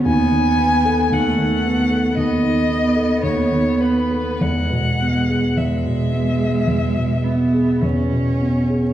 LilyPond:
<<
  \new Staff \with { instrumentName = "Violin" } { \time 4/4 \key e \mixolydian \tempo 4 = 54 gis''4 fis''4 dis''4 cis''8 b'8 | fis''4 e''2 r4 | }
  \new Staff \with { instrumentName = "Cello" } { \time 4/4 \key e \mixolydian b4 a4 b2 | gis4 gis4. b8 cis'4 | }
  \new Staff \with { instrumentName = "Grand piano" } { \clef bass \time 4/4 \key e \mixolydian dis,16 dis16 b16 a'16 dis,16 dis16 b16 a'16 dis,16 dis16 b16 a'16 dis,16 dis16 b16 a'16 | e,16 b,16 b16 gis'16 e,16 b,16 b16 gis'16 e,16 b,16 b16 gis'16 e,16 b,16 b16 gis'16 | }
>>